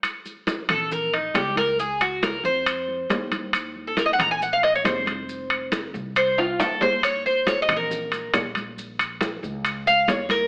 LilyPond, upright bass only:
\new Staff \with { instrumentName = "Upright bass" } { \clef bass \time 4/4 \key bes \minor \tempo 4 = 137 r4. bes,,4. des,4~ | des,4. f,4. ees,4~ | ees,4. bes,,4. f,,4~ | f,,4. c,4. ees,4~ |
ees,4. bes,,4. bes,,4~ | bes,,4. des,4. ees,4 | }